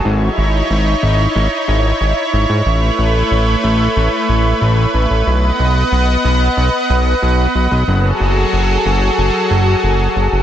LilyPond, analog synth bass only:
\new Staff \with { instrumentName = "Analog synth bass" } { \clef bass \time 4/4 \key cis \minor \tempo 4 = 92 gis,,8 gis,,8 gis,,8 gis,,8 gis,,16 r16 gis,,8 gis,,16 r16 gis,,16 gis,16 | a,,8 a,,8 a,,8 a,,8 a,,16 r16 a,,8 a,,8 a,,16 a,,16 | b,,8 b,,8 b,,8 b,,8 b,,16 r16 b,,8 b,,8 b,,16 b,,16 | fis,,8 fis,,8 fis,,8 fis,,8 fis,,16 r16 fis,,8 fis,,8 fis,,16 fis,,16 | }